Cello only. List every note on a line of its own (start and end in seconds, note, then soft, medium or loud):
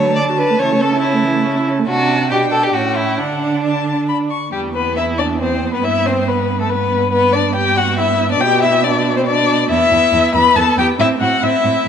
0.00 0.56 D3 soft
0.60 1.86 C#3 soft
1.88 2.33 C3 medium
2.31 2.74 B2 soft
2.75 3.20 A2 soft
3.19 4.33 D3 soft
4.53 5.79 E2 soft
5.83 8.37 G2 soft
8.40 9.67 B2 medium
9.70 9.78 E2 medium
9.91 9.99 E2 soft
10.13 10.21 E2 medium
10.35 10.43 E2 medium
10.56 10.64 E2 soft
10.77 10.85 E2 soft
10.99 11.07 A2 medium
11.21 11.29 A2 soft
11.43 11.51 A2 soft
11.64 11.72 A2 soft